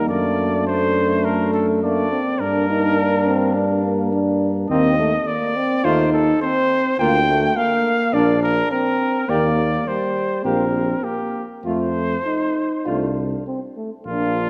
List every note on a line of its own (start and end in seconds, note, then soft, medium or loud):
0.00 0.10 D#2 soft
0.00 0.12 G3 medium
0.00 0.67 A#3 medium
0.00 0.11 D#4 medium
0.08 2.13 F#2 medium
0.08 1.83 A3 medium
0.08 1.83 D4 medium
0.08 0.66 D5 medium
0.67 1.85 A3 medium
0.67 1.26 C5 medium
1.25 1.53 A#4 medium
1.54 1.67 A4 medium
1.83 2.20 A3 medium
1.83 2.10 A#3 medium
1.83 2.20 D4 medium
1.83 2.42 D5 medium
2.11 2.43 C4 medium
2.40 4.66 G2 medium
2.40 4.66 A#3 medium
2.40 2.69 D4 medium
2.40 4.66 D4 medium
2.40 3.84 A#4 medium
2.70 3.00 D#4 medium
2.98 3.28 D4 medium
3.27 3.57 C4 medium
3.55 3.83 D4 medium
3.84 4.12 A#3 medium
4.13 4.49 D4 medium
4.69 5.17 D#2 medium
4.69 4.90 A#3 medium
4.69 4.96 C4 medium
4.69 4.90 C4 medium
4.69 5.28 D#5 loud
4.99 5.12 A3 medium
5.27 5.58 A#3 medium
5.27 5.86 D5 loud
5.56 5.86 C4 medium
5.84 6.32 D#2 medium
5.84 6.05 A3 medium
5.84 6.42 D#4 medium
5.84 6.05 F4 medium
5.84 6.12 C5 loud
6.13 6.41 A4 medium
6.42 6.98 C4 medium
6.42 6.98 C5 loud
6.99 7.47 D2 medium
6.99 7.12 A#3 medium
6.99 7.20 A#3 medium
6.99 7.20 F4 medium
6.99 7.58 G5 loud
7.28 7.56 A3 medium
7.57 8.15 A#3 medium
7.57 8.15 F5 medium
8.13 8.62 A#1 medium
8.13 8.35 A#3 medium
8.13 8.73 D4 medium
8.13 8.35 D4 medium
8.13 8.42 D5 medium
8.43 8.71 A#4 loud
8.72 9.28 C4 medium
8.72 9.31 A#4 loud
9.28 9.78 D#2 medium
9.28 9.86 A#3 medium
9.28 9.50 A#3 medium
9.28 9.50 G4 medium
9.28 9.89 D5 medium
9.87 10.45 G3 medium
9.87 10.44 C5 medium
10.43 10.94 A#1 medium
10.43 10.65 A#3 medium
10.43 11.05 C4 medium
10.43 10.65 G4 medium
10.43 11.05 A#4 medium
11.04 11.44 A#3 medium
11.04 11.44 G4 medium
11.65 12.16 F2 medium
11.65 12.17 A3 medium
11.65 11.88 A3 medium
11.65 11.87 F4 medium
11.65 13.43 C5 medium
12.26 12.87 D#4 medium
12.86 13.37 C2 medium
12.86 13.08 A3 soft
12.86 13.46 D4 medium
12.86 13.07 F4 medium
13.47 13.60 C4 medium
13.77 13.90 A3 soft
14.06 14.50 A#1 medium
14.06 14.50 A#3 medium
14.06 14.50 D4 medium
14.06 14.50 F4 medium